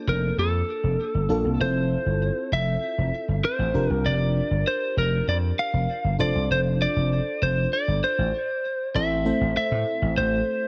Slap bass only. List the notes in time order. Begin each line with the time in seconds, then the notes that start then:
0.07 F1
0.38 F2
0.83 F1
1.14 G1
1.29 A#1
1.44 C2
1.60 F1
2.06 G1
2.52 F1
2.98 F1
3.28 G1
3.59 A1
3.74 F1
3.90 C2
4.05 F1
4.51 G1
4.97 F1
5.27 F2
5.73 F1
6.04 G1
6.19 F1
6.35 C2
6.50 F1
6.96 F1
7.42 F1
7.88 G1
8.18 A1
8.95 A1
9.41 A1
9.56 muted slap bass stroke
9.71 A2
10.02 A1
10.17 A1